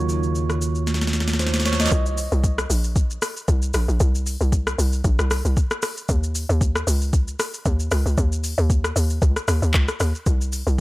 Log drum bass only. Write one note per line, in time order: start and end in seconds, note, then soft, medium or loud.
1.92 2.28 C2 loud
2.32 2.66 C2 loud
2.70 3.18 A#1 medium
3.48 3.72 C2 loud
3.74 3.87 A#1 medium
3.88 3.99 A#1 loud
4.00 4.37 C2 loud
4.41 4.75 C2 loud
4.78 5.02 C2 loud
5.04 5.17 A#1 loud
5.19 5.42 C2 medium
5.45 5.56 C2 medium
6.09 6.45 D#2 loud
6.49 6.84 D#2 loud
6.87 7.35 C#2 loud
7.66 7.89 D#2 loud
7.91 8.04 C#2 loud
8.06 8.16 C#2 medium
8.18 8.54 D#2 loud
8.58 8.92 D#2 loud
8.96 9.19 D#2 loud
9.22 9.35 C#2 loud
9.48 9.61 D#2 loud
9.62 9.73 D#2 medium
9.74 9.87 C#2 loud
10.00 10.13 D#2 loud
10.26 10.63 C2 loud
10.67 10.80 C2 loud